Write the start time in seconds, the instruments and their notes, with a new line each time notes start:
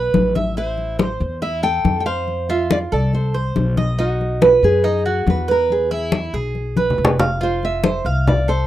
Already playing: upright bass B1, cuban tres B4
0.14 upright bass A1, high conga
0.35 cuban tres E5, high conga
0.57 cuban tres E4, nylon-string guitar C5, high conga
0.78 high conga
0.99 cuban tres C5, high conga
1.20 upright bass E2, high conga
1.42 cuban tres E4, nylon-string guitar E5, high conga
1.63 cuban tres A4, nylon-string guitar G5, high conga
1.84 upright bass F2, high conga
2.00 nylon-string guitar G5
2.06 cuban tres C5, nylon-string guitar F5, high conga
2.28 high conga
2.49 cuban tres F4, nylon-string guitar E5, high conga
2.71 nylon-string guitar D5, high conga
2.92 upright bass C2, cuban tres A4, nylon-string guitar D5, high conga
3.13 nylon-string guitar C5, high conga
3.34 cuban tres C5, high conga
3.56 upright bass B1, high conga
3.77 cuban tres D#5, high conga
3.99 cuban tres D#4, nylon-string guitar F#4, high conga
4.21 high conga
4.42 cuban tres B4, high conga
4.47 nylon-string guitar F4
4.63 upright bass F#2, nylon-string guitar G#4, high conga
4.84 cuban tres D#4, high conga
5.06 cuban tres F#4, high conga
5.27 upright bass E2, nylon-string guitar B4, high conga
5.48 nylon-string guitar A#4, cuban tres B4, high conga
5.70 nylon-string guitar G#4, high conga
5.91 cuban tres E4, high conga
6.12 high conga
6.33 upright bass B1, cuban tres G#4, high conga
6.55 high conga
6.77 cuban tres B4, high conga
6.90 low conga
6.98 upright bass F1
7.05 low conga
7.19 cuban tres F5, low conga
7.41 cuban tres F4, nylon-string guitar C5, high conga
7.63 nylon-string guitar E5, high conga
7.84 cuban tres C5, high conga
8.05 upright bass C2, cuban tres F5, high conga
8.27 nylon-string guitar D5, high conga, low conga
8.48 cuban tres A4, nylon-string guitar C5, high conga